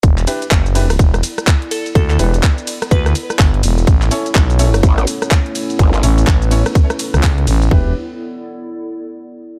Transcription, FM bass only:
X:1
M:4/4
L:1/16
Q:"Swing 16ths" 1/4=125
K:Amix
V:1 name="FM bass" clef=bass
E,,,2 z2 F,,,4 E,,,2 z6 | D,,2 E,,,2 z4 D,,2 z2 G,,,2 E,,,2 | A,,,2 z2 B,,,4 z8 | z2 A,,,2 z6 z C,,3 A,,,2 |
E,,,2 z12 z2 |]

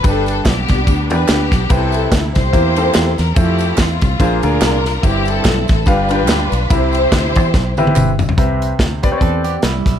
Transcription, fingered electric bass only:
X:1
M:4/4
L:1/8
Q:"Swing" 1/4=144
K:C
V:1 name="Fingered electric bass" clef=bass
G,,,2 B,,, C,, D,, E,, D,, B,,, | C,,2 D,, C,, E,,2 E,, E,, | F,,2 E,, C,, _B,,, D,, C,,2 | G,,,2 B,,, A,,, G,,,2 D,, B,,, |
C,,2 D,, E,, B,,, A,,, G,,,2 | C,,2 D,,2 E,,2 C,, B,,, |]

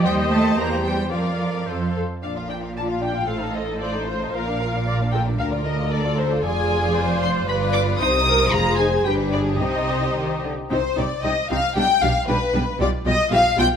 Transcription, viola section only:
X:1
M:2/4
L:1/8
Q:1/4=114
K:Bb
V:1 name="Viola section"
[ce]2 [Gc]2 | [Bd]2 [Ac] z | z2 F2 | A2 c2 |
B2 d A | B2 A2 | [K:Cm] A2 c2 | =B2 c _B |
A2 G2 | e3 z | [CE] [CE] [CE] [CE] | [G,D] [G,D] [G,D] [G,D] |
[G,F] [G,F] [G,F] [G,F] |]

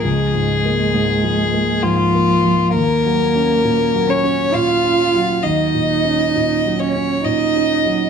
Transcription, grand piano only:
X:1
M:3/4
L:1/8
Q:1/4=67
K:Ebm
V:1 name="Grand piano" clef=bass
(3[D,,F,] A,, B, (3A,, F, B, (3A,, B, F, | (3E,, G, D (3B,, G, D (3B,, D G, | (3E,, B,, D (3B,, G, D (3B,, D G, |]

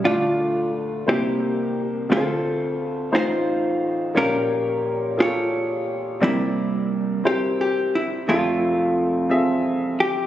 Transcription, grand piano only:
X:1
M:6/8
L:1/8
Q:3/8=58
K:F
V:1 name="Grand piano"
[A,DEFd]2 z [B,D_E=Ec]2 z | [A,DFBc]2 z [A,_EFc]2 z | [B,FG_d]2 z [B,FG_A=A]2 z | [CDEBd]2 z [CEBc]2 z |
[CF_A=Ae]2 z [CF_A=Ae]2 z |]
V:2 name="Grand piano" clef=bass
[D,,D,]3 [C,,C,]3 | [D,,D,]3 [A,,,A,,]3 | [B,,,B,,]6 | [C,,C,]6 |
[F,,,F,,]6 |]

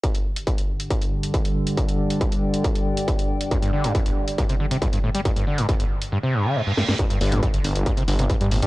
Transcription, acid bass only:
X:1
M:4/4
L:1/16
Q:1/4=138
K:Cdor
V:1 name="Acid bass" clef=bass
z16 | z16 | G,, G,, D, G,, G,, G,,, z2 G,, C, D, C, G,, G,, A,, G, | G,, G,, D, G,, G,, G,,, z2 G,, C, G,, D, G,, G,, G,, G,, |
G,, G,, D, G,, G,, G,,, z2 G,, C, D, C, G,, G,, A,, G, |]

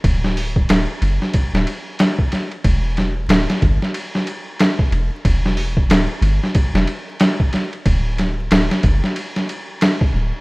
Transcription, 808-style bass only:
X:1
M:4/4
L:1/16
Q:"Swing 16ths" 1/4=92
K:Dmix
V:1 name="808-style bass" clef=bass
D,,,4 D,,, z F,,, z2 D,,, z6 | E,,,4 D,,, z G,,, z6 z E,,, z | E,,,4 D,,, z G,,, z2 E,,, z6 | D,,,4 D,,, z F,,, z6 z D,,, z |]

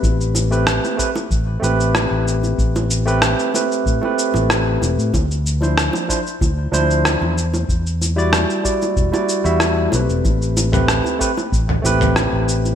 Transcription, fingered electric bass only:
X:1
M:4/4
L:1/16
Q:1/4=94
K:Am
V:1 name="Fingered electric bass" clef=bass
A,,,4- A,,, z3 A,,,2 A,,,3 A,,,3 | A,,,4- A,,, z3 A,, z2 A,,,3 E,,, A,, | D,,4- D,, z3 D,,2 D,,3 E,,3 | E,,4- E,, z3 E,,, z2 E,,3 B,,, E,,, |
A,,,4- A,,, z3 A,,,2 A,,,3 A,,,3 |]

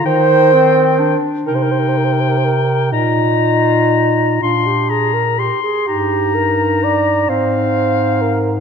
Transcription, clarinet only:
X:1
M:6/8
L:1/8
Q:3/8=42
K:Eb
V:1 name="Clarinet"
E C D E2 z | F3 D2 z | E3 C3 |]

